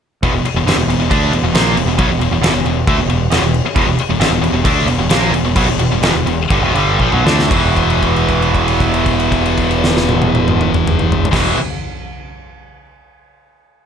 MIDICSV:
0, 0, Header, 1, 6, 480
1, 0, Start_track
1, 0, Key_signature, 1, "minor"
1, 0, Tempo, 441176
1, 250, Time_signature, 4, 2, 24, 8
1, 5051, Tempo, 465116
1, 6971, Tempo, 502092
1, 7931, Tempo, 517241
1, 13826, End_track
2, 0, Start_track
2, 0, Title_t, "Distorted electric guitar"
2, 0, Program_c, 0, 30
2, 257, Note_on_c, 0, 40, 93
2, 266, Note_on_c, 0, 47, 116
2, 352, Note_off_c, 0, 40, 0
2, 361, Note_off_c, 0, 47, 0
2, 365, Note_on_c, 0, 40, 59
2, 374, Note_on_c, 0, 47, 71
2, 482, Note_off_c, 0, 40, 0
2, 492, Note_off_c, 0, 47, 0
2, 618, Note_on_c, 0, 40, 71
2, 623, Note_on_c, 0, 47, 74
2, 725, Note_off_c, 0, 40, 0
2, 730, Note_on_c, 0, 43, 96
2, 736, Note_off_c, 0, 47, 0
2, 742, Note_on_c, 0, 50, 92
2, 842, Note_off_c, 0, 43, 0
2, 848, Note_off_c, 0, 50, 0
2, 852, Note_on_c, 0, 40, 62
2, 854, Note_on_c, 0, 47, 73
2, 961, Note_off_c, 0, 40, 0
2, 965, Note_off_c, 0, 47, 0
2, 974, Note_on_c, 0, 40, 61
2, 978, Note_on_c, 0, 47, 62
2, 1072, Note_off_c, 0, 40, 0
2, 1080, Note_off_c, 0, 47, 0
2, 1085, Note_on_c, 0, 40, 67
2, 1093, Note_on_c, 0, 47, 77
2, 1194, Note_off_c, 0, 47, 0
2, 1198, Note_on_c, 0, 50, 91
2, 1203, Note_on_c, 0, 57, 92
2, 1206, Note_off_c, 0, 40, 0
2, 1206, Note_on_c, 0, 62, 110
2, 1435, Note_off_c, 0, 50, 0
2, 1438, Note_off_c, 0, 57, 0
2, 1439, Note_off_c, 0, 62, 0
2, 1446, Note_on_c, 0, 47, 66
2, 1447, Note_on_c, 0, 40, 69
2, 1554, Note_off_c, 0, 40, 0
2, 1561, Note_off_c, 0, 47, 0
2, 1567, Note_on_c, 0, 40, 71
2, 1574, Note_on_c, 0, 47, 74
2, 1679, Note_off_c, 0, 47, 0
2, 1684, Note_on_c, 0, 46, 91
2, 1687, Note_off_c, 0, 40, 0
2, 1690, Note_on_c, 0, 53, 81
2, 1698, Note_on_c, 0, 58, 94
2, 1917, Note_off_c, 0, 46, 0
2, 1920, Note_off_c, 0, 53, 0
2, 1924, Note_off_c, 0, 58, 0
2, 1928, Note_on_c, 0, 40, 67
2, 1931, Note_on_c, 0, 47, 67
2, 2035, Note_off_c, 0, 40, 0
2, 2038, Note_off_c, 0, 47, 0
2, 2048, Note_on_c, 0, 40, 57
2, 2051, Note_on_c, 0, 47, 65
2, 2147, Note_off_c, 0, 47, 0
2, 2160, Note_on_c, 0, 47, 102
2, 2166, Note_off_c, 0, 40, 0
2, 2170, Note_on_c, 0, 54, 109
2, 2275, Note_off_c, 0, 47, 0
2, 2281, Note_off_c, 0, 54, 0
2, 2290, Note_on_c, 0, 40, 66
2, 2295, Note_on_c, 0, 47, 72
2, 2398, Note_off_c, 0, 40, 0
2, 2403, Note_off_c, 0, 47, 0
2, 2411, Note_on_c, 0, 40, 64
2, 2416, Note_on_c, 0, 47, 72
2, 2515, Note_off_c, 0, 40, 0
2, 2517, Note_off_c, 0, 47, 0
2, 2528, Note_on_c, 0, 40, 68
2, 2530, Note_on_c, 0, 47, 74
2, 2635, Note_off_c, 0, 40, 0
2, 2642, Note_off_c, 0, 47, 0
2, 2648, Note_on_c, 0, 40, 96
2, 2655, Note_on_c, 0, 47, 104
2, 2754, Note_off_c, 0, 40, 0
2, 2763, Note_off_c, 0, 47, 0
2, 2767, Note_on_c, 0, 40, 61
2, 2776, Note_on_c, 0, 47, 72
2, 2880, Note_off_c, 0, 40, 0
2, 2885, Note_off_c, 0, 47, 0
2, 2893, Note_on_c, 0, 40, 59
2, 2898, Note_on_c, 0, 47, 72
2, 3080, Note_off_c, 0, 40, 0
2, 3083, Note_off_c, 0, 47, 0
2, 3128, Note_on_c, 0, 50, 85
2, 3140, Note_on_c, 0, 57, 94
2, 3239, Note_off_c, 0, 50, 0
2, 3245, Note_off_c, 0, 57, 0
2, 3251, Note_on_c, 0, 40, 63
2, 3257, Note_on_c, 0, 47, 70
2, 3356, Note_off_c, 0, 40, 0
2, 3357, Note_off_c, 0, 47, 0
2, 3369, Note_on_c, 0, 40, 60
2, 3370, Note_on_c, 0, 47, 78
2, 3558, Note_off_c, 0, 40, 0
2, 3559, Note_off_c, 0, 47, 0
2, 3617, Note_on_c, 0, 40, 82
2, 3632, Note_on_c, 0, 47, 97
2, 3723, Note_off_c, 0, 40, 0
2, 3730, Note_off_c, 0, 47, 0
2, 3739, Note_on_c, 0, 40, 62
2, 3750, Note_on_c, 0, 47, 66
2, 3923, Note_off_c, 0, 40, 0
2, 3929, Note_off_c, 0, 47, 0
2, 4106, Note_on_c, 0, 40, 96
2, 4115, Note_on_c, 0, 47, 111
2, 4207, Note_off_c, 0, 40, 0
2, 4212, Note_off_c, 0, 47, 0
2, 4226, Note_on_c, 0, 40, 62
2, 4230, Note_on_c, 0, 47, 66
2, 4335, Note_off_c, 0, 40, 0
2, 4337, Note_off_c, 0, 47, 0
2, 4464, Note_on_c, 0, 40, 70
2, 4469, Note_on_c, 0, 47, 78
2, 4570, Note_off_c, 0, 40, 0
2, 4575, Note_on_c, 0, 43, 93
2, 4577, Note_off_c, 0, 47, 0
2, 4582, Note_on_c, 0, 50, 98
2, 4683, Note_off_c, 0, 43, 0
2, 4687, Note_off_c, 0, 50, 0
2, 4700, Note_on_c, 0, 40, 62
2, 4704, Note_on_c, 0, 47, 65
2, 4795, Note_off_c, 0, 40, 0
2, 4802, Note_off_c, 0, 47, 0
2, 4808, Note_on_c, 0, 40, 64
2, 4815, Note_on_c, 0, 47, 74
2, 4921, Note_off_c, 0, 40, 0
2, 4928, Note_off_c, 0, 47, 0
2, 4934, Note_on_c, 0, 40, 70
2, 4941, Note_on_c, 0, 47, 69
2, 5053, Note_off_c, 0, 40, 0
2, 5056, Note_off_c, 0, 47, 0
2, 5061, Note_on_c, 0, 50, 97
2, 5063, Note_on_c, 0, 57, 105
2, 5076, Note_on_c, 0, 62, 120
2, 5281, Note_off_c, 0, 50, 0
2, 5281, Note_off_c, 0, 57, 0
2, 5285, Note_on_c, 0, 40, 66
2, 5288, Note_off_c, 0, 62, 0
2, 5292, Note_on_c, 0, 47, 71
2, 5393, Note_off_c, 0, 40, 0
2, 5395, Note_off_c, 0, 47, 0
2, 5406, Note_on_c, 0, 40, 71
2, 5408, Note_on_c, 0, 47, 80
2, 5514, Note_off_c, 0, 47, 0
2, 5518, Note_on_c, 0, 46, 85
2, 5519, Note_off_c, 0, 40, 0
2, 5528, Note_on_c, 0, 53, 87
2, 5529, Note_on_c, 0, 58, 109
2, 5746, Note_off_c, 0, 46, 0
2, 5751, Note_off_c, 0, 53, 0
2, 5751, Note_off_c, 0, 58, 0
2, 5768, Note_on_c, 0, 40, 65
2, 5771, Note_on_c, 0, 47, 74
2, 5867, Note_off_c, 0, 40, 0
2, 5869, Note_off_c, 0, 47, 0
2, 5879, Note_on_c, 0, 40, 64
2, 5881, Note_on_c, 0, 47, 66
2, 5984, Note_off_c, 0, 47, 0
2, 5994, Note_off_c, 0, 40, 0
2, 5996, Note_on_c, 0, 47, 100
2, 6009, Note_on_c, 0, 54, 106
2, 6106, Note_off_c, 0, 47, 0
2, 6112, Note_off_c, 0, 54, 0
2, 6122, Note_on_c, 0, 40, 62
2, 6128, Note_on_c, 0, 47, 67
2, 6224, Note_off_c, 0, 40, 0
2, 6230, Note_off_c, 0, 47, 0
2, 6236, Note_on_c, 0, 40, 68
2, 6243, Note_on_c, 0, 47, 75
2, 6355, Note_off_c, 0, 40, 0
2, 6358, Note_off_c, 0, 47, 0
2, 6367, Note_on_c, 0, 40, 68
2, 6372, Note_on_c, 0, 47, 75
2, 6471, Note_off_c, 0, 40, 0
2, 6484, Note_off_c, 0, 47, 0
2, 6484, Note_on_c, 0, 40, 84
2, 6495, Note_on_c, 0, 47, 101
2, 6595, Note_off_c, 0, 40, 0
2, 6600, Note_off_c, 0, 47, 0
2, 6612, Note_on_c, 0, 40, 63
2, 6615, Note_on_c, 0, 47, 72
2, 6711, Note_off_c, 0, 40, 0
2, 6715, Note_off_c, 0, 47, 0
2, 6723, Note_on_c, 0, 40, 68
2, 6727, Note_on_c, 0, 47, 68
2, 6921, Note_off_c, 0, 40, 0
2, 6924, Note_off_c, 0, 47, 0
2, 6979, Note_on_c, 0, 43, 86
2, 6988, Note_on_c, 0, 50, 107
2, 7084, Note_off_c, 0, 43, 0
2, 7089, Note_off_c, 0, 50, 0
2, 7098, Note_on_c, 0, 40, 80
2, 7103, Note_on_c, 0, 47, 100
2, 7201, Note_off_c, 0, 40, 0
2, 7204, Note_on_c, 0, 43, 89
2, 7206, Note_off_c, 0, 47, 0
2, 7213, Note_on_c, 0, 50, 95
2, 7215, Note_on_c, 0, 55, 101
2, 7435, Note_off_c, 0, 43, 0
2, 7440, Note_off_c, 0, 50, 0
2, 7441, Note_off_c, 0, 55, 0
2, 7455, Note_on_c, 0, 46, 81
2, 7462, Note_on_c, 0, 53, 92
2, 7554, Note_off_c, 0, 46, 0
2, 7558, Note_on_c, 0, 47, 87
2, 7566, Note_off_c, 0, 53, 0
2, 7572, Note_on_c, 0, 54, 99
2, 7674, Note_off_c, 0, 47, 0
2, 7682, Note_off_c, 0, 54, 0
2, 7689, Note_on_c, 0, 50, 85
2, 7693, Note_on_c, 0, 57, 93
2, 7702, Note_on_c, 0, 62, 106
2, 7925, Note_off_c, 0, 50, 0
2, 7927, Note_off_c, 0, 57, 0
2, 7927, Note_on_c, 0, 40, 93
2, 7931, Note_off_c, 0, 62, 0
2, 7944, Note_on_c, 0, 47, 115
2, 7960, Note_on_c, 0, 52, 111
2, 11425, Note_off_c, 0, 40, 0
2, 11433, Note_off_c, 0, 47, 0
2, 11441, Note_off_c, 0, 52, 0
2, 11462, Note_on_c, 0, 40, 84
2, 11483, Note_on_c, 0, 47, 104
2, 11501, Note_on_c, 0, 52, 94
2, 11689, Note_off_c, 0, 40, 0
2, 11699, Note_off_c, 0, 47, 0
2, 11708, Note_off_c, 0, 52, 0
2, 13826, End_track
3, 0, Start_track
3, 0, Title_t, "Fingered electric bass"
3, 0, Program_c, 1, 33
3, 249, Note_on_c, 1, 28, 97
3, 349, Note_off_c, 1, 28, 0
3, 356, Note_on_c, 1, 28, 83
3, 463, Note_off_c, 1, 28, 0
3, 591, Note_on_c, 1, 28, 85
3, 711, Note_off_c, 1, 28, 0
3, 716, Note_on_c, 1, 31, 86
3, 821, Note_off_c, 1, 31, 0
3, 828, Note_on_c, 1, 28, 77
3, 949, Note_off_c, 1, 28, 0
3, 953, Note_on_c, 1, 28, 80
3, 1062, Note_off_c, 1, 28, 0
3, 1069, Note_on_c, 1, 28, 73
3, 1189, Note_off_c, 1, 28, 0
3, 1205, Note_on_c, 1, 38, 90
3, 1422, Note_off_c, 1, 38, 0
3, 1429, Note_on_c, 1, 28, 74
3, 1541, Note_off_c, 1, 28, 0
3, 1547, Note_on_c, 1, 28, 88
3, 1660, Note_off_c, 1, 28, 0
3, 1666, Note_on_c, 1, 34, 87
3, 1898, Note_off_c, 1, 34, 0
3, 1908, Note_on_c, 1, 28, 78
3, 2014, Note_off_c, 1, 28, 0
3, 2020, Note_on_c, 1, 28, 75
3, 2143, Note_off_c, 1, 28, 0
3, 2157, Note_on_c, 1, 35, 107
3, 2272, Note_off_c, 1, 35, 0
3, 2284, Note_on_c, 1, 28, 74
3, 2387, Note_off_c, 1, 28, 0
3, 2394, Note_on_c, 1, 28, 80
3, 2511, Note_off_c, 1, 28, 0
3, 2517, Note_on_c, 1, 28, 78
3, 2623, Note_off_c, 1, 28, 0
3, 2630, Note_on_c, 1, 28, 85
3, 2748, Note_off_c, 1, 28, 0
3, 2761, Note_on_c, 1, 28, 73
3, 2874, Note_off_c, 1, 28, 0
3, 2885, Note_on_c, 1, 28, 79
3, 3108, Note_off_c, 1, 28, 0
3, 3127, Note_on_c, 1, 38, 90
3, 3237, Note_off_c, 1, 38, 0
3, 3249, Note_on_c, 1, 28, 89
3, 3350, Note_off_c, 1, 28, 0
3, 3356, Note_on_c, 1, 28, 79
3, 3583, Note_off_c, 1, 28, 0
3, 3607, Note_on_c, 1, 28, 82
3, 3714, Note_off_c, 1, 28, 0
3, 3721, Note_on_c, 1, 28, 79
3, 3945, Note_off_c, 1, 28, 0
3, 4091, Note_on_c, 1, 28, 104
3, 4199, Note_off_c, 1, 28, 0
3, 4207, Note_on_c, 1, 28, 72
3, 4317, Note_off_c, 1, 28, 0
3, 4452, Note_on_c, 1, 28, 76
3, 4555, Note_off_c, 1, 28, 0
3, 4562, Note_on_c, 1, 31, 100
3, 4675, Note_off_c, 1, 31, 0
3, 4683, Note_on_c, 1, 28, 81
3, 4789, Note_off_c, 1, 28, 0
3, 4796, Note_on_c, 1, 28, 79
3, 4911, Note_off_c, 1, 28, 0
3, 4917, Note_on_c, 1, 28, 86
3, 5035, Note_off_c, 1, 28, 0
3, 5061, Note_on_c, 1, 38, 91
3, 5272, Note_off_c, 1, 38, 0
3, 5277, Note_on_c, 1, 28, 84
3, 5388, Note_off_c, 1, 28, 0
3, 5398, Note_on_c, 1, 28, 89
3, 5507, Note_off_c, 1, 28, 0
3, 5514, Note_on_c, 1, 34, 91
3, 5735, Note_off_c, 1, 34, 0
3, 5745, Note_on_c, 1, 28, 77
3, 5859, Note_off_c, 1, 28, 0
3, 5871, Note_on_c, 1, 28, 81
3, 5982, Note_off_c, 1, 28, 0
3, 5990, Note_on_c, 1, 35, 110
3, 6102, Note_off_c, 1, 35, 0
3, 6106, Note_on_c, 1, 28, 81
3, 6220, Note_off_c, 1, 28, 0
3, 6227, Note_on_c, 1, 28, 86
3, 6342, Note_off_c, 1, 28, 0
3, 6352, Note_on_c, 1, 28, 80
3, 6466, Note_off_c, 1, 28, 0
3, 6472, Note_on_c, 1, 28, 94
3, 6587, Note_off_c, 1, 28, 0
3, 6610, Note_on_c, 1, 28, 81
3, 6714, Note_off_c, 1, 28, 0
3, 6720, Note_on_c, 1, 28, 75
3, 6953, Note_off_c, 1, 28, 0
3, 6970, Note_on_c, 1, 31, 83
3, 7073, Note_off_c, 1, 31, 0
3, 7079, Note_on_c, 1, 28, 110
3, 7192, Note_off_c, 1, 28, 0
3, 7203, Note_on_c, 1, 31, 88
3, 7425, Note_off_c, 1, 31, 0
3, 7440, Note_on_c, 1, 34, 75
3, 7553, Note_off_c, 1, 34, 0
3, 7570, Note_on_c, 1, 35, 96
3, 7680, Note_off_c, 1, 35, 0
3, 7686, Note_on_c, 1, 38, 97
3, 7914, Note_off_c, 1, 38, 0
3, 7934, Note_on_c, 1, 28, 107
3, 11391, Note_off_c, 1, 28, 0
3, 11475, Note_on_c, 1, 28, 91
3, 11680, Note_off_c, 1, 28, 0
3, 13826, End_track
4, 0, Start_track
4, 0, Title_t, "Muted distorted electric guitar strokes"
4, 495, Note_on_c, 9, 29, 62
4, 604, Note_off_c, 9, 29, 0
4, 3986, Note_on_c, 9, 29, 58
4, 4095, Note_off_c, 9, 29, 0
4, 4346, Note_on_c, 9, 29, 66
4, 4455, Note_off_c, 9, 29, 0
4, 13826, End_track
5, 0, Start_track
5, 0, Title_t, "Muted fingered electric bass strokes"
5, 470, Note_on_c, 9, 29, 42
5, 579, Note_off_c, 9, 29, 0
5, 3965, Note_on_c, 9, 29, 41
5, 4074, Note_off_c, 9, 29, 0
5, 4343, Note_on_c, 9, 29, 43
5, 4452, Note_off_c, 9, 29, 0
5, 13826, End_track
6, 0, Start_track
6, 0, Title_t, "Drums"
6, 249, Note_on_c, 9, 49, 77
6, 251, Note_on_c, 9, 36, 93
6, 358, Note_off_c, 9, 49, 0
6, 360, Note_off_c, 9, 36, 0
6, 492, Note_on_c, 9, 49, 68
6, 601, Note_off_c, 9, 49, 0
6, 738, Note_on_c, 9, 49, 83
6, 749, Note_on_c, 9, 38, 102
6, 847, Note_off_c, 9, 49, 0
6, 858, Note_off_c, 9, 38, 0
6, 979, Note_on_c, 9, 49, 62
6, 1088, Note_off_c, 9, 49, 0
6, 1208, Note_on_c, 9, 36, 100
6, 1211, Note_on_c, 9, 49, 81
6, 1317, Note_off_c, 9, 36, 0
6, 1320, Note_off_c, 9, 49, 0
6, 1448, Note_on_c, 9, 49, 68
6, 1557, Note_off_c, 9, 49, 0
6, 1682, Note_on_c, 9, 49, 77
6, 1692, Note_on_c, 9, 38, 112
6, 1790, Note_off_c, 9, 49, 0
6, 1801, Note_off_c, 9, 38, 0
6, 1927, Note_on_c, 9, 49, 66
6, 2035, Note_off_c, 9, 49, 0
6, 2162, Note_on_c, 9, 49, 76
6, 2163, Note_on_c, 9, 36, 98
6, 2271, Note_off_c, 9, 49, 0
6, 2272, Note_off_c, 9, 36, 0
6, 2406, Note_on_c, 9, 49, 63
6, 2515, Note_off_c, 9, 49, 0
6, 2646, Note_on_c, 9, 49, 77
6, 2657, Note_on_c, 9, 38, 119
6, 2755, Note_off_c, 9, 49, 0
6, 2766, Note_off_c, 9, 38, 0
6, 2889, Note_on_c, 9, 49, 52
6, 2998, Note_off_c, 9, 49, 0
6, 3126, Note_on_c, 9, 49, 77
6, 3127, Note_on_c, 9, 36, 102
6, 3235, Note_off_c, 9, 49, 0
6, 3236, Note_off_c, 9, 36, 0
6, 3368, Note_on_c, 9, 49, 56
6, 3477, Note_off_c, 9, 49, 0
6, 3605, Note_on_c, 9, 49, 78
6, 3616, Note_on_c, 9, 38, 100
6, 3714, Note_off_c, 9, 49, 0
6, 3725, Note_off_c, 9, 38, 0
6, 3854, Note_on_c, 9, 49, 57
6, 3963, Note_off_c, 9, 49, 0
6, 4089, Note_on_c, 9, 36, 105
6, 4089, Note_on_c, 9, 49, 72
6, 4198, Note_off_c, 9, 36, 0
6, 4198, Note_off_c, 9, 49, 0
6, 4336, Note_on_c, 9, 49, 57
6, 4444, Note_off_c, 9, 49, 0
6, 4578, Note_on_c, 9, 49, 78
6, 4589, Note_on_c, 9, 38, 106
6, 4687, Note_off_c, 9, 49, 0
6, 4698, Note_off_c, 9, 38, 0
6, 4826, Note_on_c, 9, 49, 58
6, 4935, Note_off_c, 9, 49, 0
6, 5059, Note_on_c, 9, 36, 103
6, 5064, Note_on_c, 9, 49, 88
6, 5162, Note_off_c, 9, 36, 0
6, 5167, Note_off_c, 9, 49, 0
6, 5293, Note_on_c, 9, 49, 60
6, 5397, Note_off_c, 9, 49, 0
6, 5523, Note_on_c, 9, 49, 86
6, 5534, Note_on_c, 9, 38, 118
6, 5627, Note_off_c, 9, 49, 0
6, 5637, Note_off_c, 9, 38, 0
6, 5768, Note_on_c, 9, 49, 58
6, 5871, Note_off_c, 9, 49, 0
6, 5996, Note_on_c, 9, 36, 105
6, 5999, Note_on_c, 9, 49, 89
6, 6100, Note_off_c, 9, 36, 0
6, 6102, Note_off_c, 9, 49, 0
6, 6238, Note_on_c, 9, 49, 64
6, 6341, Note_off_c, 9, 49, 0
6, 6479, Note_on_c, 9, 49, 80
6, 6490, Note_on_c, 9, 38, 111
6, 6582, Note_off_c, 9, 49, 0
6, 6593, Note_off_c, 9, 38, 0
6, 6729, Note_on_c, 9, 49, 58
6, 6832, Note_off_c, 9, 49, 0
6, 6971, Note_on_c, 9, 49, 74
6, 6973, Note_on_c, 9, 36, 112
6, 7067, Note_off_c, 9, 49, 0
6, 7068, Note_off_c, 9, 36, 0
6, 7210, Note_on_c, 9, 49, 62
6, 7306, Note_off_c, 9, 49, 0
6, 7443, Note_on_c, 9, 36, 59
6, 7539, Note_off_c, 9, 36, 0
6, 7564, Note_on_c, 9, 47, 63
6, 7660, Note_off_c, 9, 47, 0
6, 7701, Note_on_c, 9, 38, 100
6, 7797, Note_off_c, 9, 38, 0
6, 7818, Note_on_c, 9, 38, 83
6, 7914, Note_off_c, 9, 38, 0
6, 7933, Note_on_c, 9, 36, 103
6, 7939, Note_on_c, 9, 57, 81
6, 8026, Note_off_c, 9, 36, 0
6, 8032, Note_off_c, 9, 57, 0
6, 8171, Note_on_c, 9, 36, 61
6, 8174, Note_on_c, 9, 57, 49
6, 8264, Note_off_c, 9, 36, 0
6, 8267, Note_off_c, 9, 57, 0
6, 8296, Note_on_c, 9, 49, 47
6, 8389, Note_off_c, 9, 49, 0
6, 8413, Note_on_c, 9, 36, 62
6, 8415, Note_on_c, 9, 57, 44
6, 8506, Note_off_c, 9, 36, 0
6, 8508, Note_off_c, 9, 57, 0
6, 8539, Note_on_c, 9, 49, 49
6, 8632, Note_off_c, 9, 49, 0
6, 8655, Note_on_c, 9, 36, 66
6, 8660, Note_on_c, 9, 57, 47
6, 8747, Note_off_c, 9, 36, 0
6, 8753, Note_off_c, 9, 57, 0
6, 8780, Note_on_c, 9, 49, 46
6, 8873, Note_off_c, 9, 49, 0
6, 8894, Note_on_c, 9, 36, 63
6, 8901, Note_on_c, 9, 57, 48
6, 8987, Note_off_c, 9, 36, 0
6, 8994, Note_off_c, 9, 57, 0
6, 9017, Note_on_c, 9, 49, 51
6, 9110, Note_off_c, 9, 49, 0
6, 9134, Note_on_c, 9, 36, 68
6, 9140, Note_on_c, 9, 57, 50
6, 9227, Note_off_c, 9, 36, 0
6, 9233, Note_off_c, 9, 57, 0
6, 9257, Note_on_c, 9, 49, 50
6, 9350, Note_off_c, 9, 49, 0
6, 9372, Note_on_c, 9, 36, 63
6, 9372, Note_on_c, 9, 57, 53
6, 9465, Note_off_c, 9, 36, 0
6, 9465, Note_off_c, 9, 57, 0
6, 9499, Note_on_c, 9, 49, 54
6, 9591, Note_off_c, 9, 49, 0
6, 9613, Note_on_c, 9, 36, 70
6, 9616, Note_on_c, 9, 57, 52
6, 9706, Note_off_c, 9, 36, 0
6, 9709, Note_off_c, 9, 57, 0
6, 9739, Note_on_c, 9, 49, 54
6, 9831, Note_off_c, 9, 49, 0
6, 9852, Note_on_c, 9, 36, 69
6, 9854, Note_on_c, 9, 57, 52
6, 9944, Note_off_c, 9, 36, 0
6, 9947, Note_off_c, 9, 57, 0
6, 9971, Note_on_c, 9, 49, 57
6, 10064, Note_off_c, 9, 49, 0
6, 10096, Note_on_c, 9, 38, 100
6, 10189, Note_off_c, 9, 38, 0
6, 10216, Note_on_c, 9, 38, 96
6, 10309, Note_off_c, 9, 38, 0
6, 10327, Note_on_c, 9, 48, 96
6, 10420, Note_off_c, 9, 48, 0
6, 10446, Note_on_c, 9, 48, 95
6, 10538, Note_off_c, 9, 48, 0
6, 10568, Note_on_c, 9, 48, 90
6, 10661, Note_off_c, 9, 48, 0
6, 10688, Note_on_c, 9, 47, 94
6, 10781, Note_off_c, 9, 47, 0
6, 10809, Note_on_c, 9, 47, 92
6, 10902, Note_off_c, 9, 47, 0
6, 10935, Note_on_c, 9, 45, 102
6, 11027, Note_off_c, 9, 45, 0
6, 11056, Note_on_c, 9, 45, 111
6, 11149, Note_off_c, 9, 45, 0
6, 11166, Note_on_c, 9, 45, 94
6, 11259, Note_off_c, 9, 45, 0
6, 11285, Note_on_c, 9, 43, 97
6, 11377, Note_off_c, 9, 43, 0
6, 11406, Note_on_c, 9, 43, 108
6, 11478, Note_on_c, 9, 36, 115
6, 11480, Note_on_c, 9, 57, 111
6, 11489, Note_on_c, 9, 38, 106
6, 11499, Note_off_c, 9, 43, 0
6, 11571, Note_off_c, 9, 36, 0
6, 11572, Note_off_c, 9, 57, 0
6, 11582, Note_off_c, 9, 38, 0
6, 13826, End_track
0, 0, End_of_file